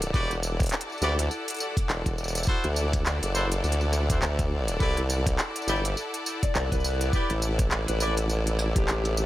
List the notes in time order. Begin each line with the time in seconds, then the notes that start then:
Already playing: A1 E4 A4 D5 F#5
0.02 closed hi-hat, tambourine
0.14 E1 F#4 G4 B4 D5, kick, tambourine
0.31 cross-stick, closed hi-hat, tambourine
0.43 tambourine
0.60 kick, cross-stick, closed hi-hat, tambourine
0.63 closed hi-hat
0.66 closed hi-hat
0.69 clap, closed hi-hat, tambourine
0.81 closed hi-hat
0.90 tambourine
0.92 tambourine
0.98 D2 F#4 G4 B4 D5, tambourine
1.02 tambourine
1.19 closed hi-hat, tambourine
1.31 tambourine
1.48 closed hi-hat, tambourine
1.50 closed hi-hat
1.54 closed hi-hat
1.56 closed hi-hat
1.58 closed hi-hat, tambourine
1.77 kick, closed hi-hat, tambourine
1.89 E1, clap, tambourine
2.06 E1, kick, closed hi-hat, tambourine
2.18 tambourine
2.24 tambourine
2.28 tambourine
2.35 closed hi-hat, tambourine
2.37 tambourine
2.43 tambourine
2.47 E4 F#4 A4 C5, kick, tambourine
2.64 D2, cross-stick, closed hi-hat, tambourine
2.76 tambourine
2.93 kick, cross-stick, closed hi-hat, tambourine
3.06 D2, clap, tambourine
3.22 F#1, closed hi-hat, tambourine
3.35 E4 F#4 A4 C5, tambourine
3.52 closed hi-hat, tambourine
3.64 D2, tambourine
3.72 closed hi-hat
3.81 tambourine
3.93 cross-stick, tambourine
4.10 E4 F#4 A4 C5, kick, closed hi-hat, tambourine
4.22 D2, clap, tambourine
4.39 kick, closed hi-hat, tambourine
4.68 closed hi-hat, tambourine
4.80 C2 E4 G4 A4 B4 D5, kick, tambourine
4.97 cross-stick, closed hi-hat, tambourine
5.10 tambourine
5.26 kick, cross-stick, closed hi-hat, tambourine
5.39 clap, tambourine
5.56 closed hi-hat, tambourine
5.62 tambourine
5.67 G1 E4 G4 B4 D5, tambourine
5.85 closed hi-hat, tambourine
5.97 tambourine
6.14 closed hi-hat, tambourine
6.26 tambourine
6.43 D5, kick, closed hi-hat, tambourine
6.55 C2 D5, clap, tambourine
6.72 C2 B4, kick, closed hi-hat, tambourine
6.74 tambourine
6.80 tambourine
6.84 tambourine
6.94 tambourine
7.01 closed hi-hat, tambourine
7.13 E4 G4 B4 D5, kick, tambourine
7.30 A1, cross-stick, closed hi-hat, tambourine
7.42 tambourine
7.59 kick, cross-stick, closed hi-hat, tambourine
7.71 A1, clap, tambourine
7.88 A1 B4, closed hi-hat, tambourine
8.00 E4 G4 B4 D5, tambourine
8.17 closed hi-hat, tambourine
8.29 tambourine
8.47 closed hi-hat, tambourine
8.59 cross-stick, tambourine
8.76 A1 G4, kick, closed hi-hat
8.88 clap, tambourine
9.05 closed hi-hat, tambourine
9.17 tambourine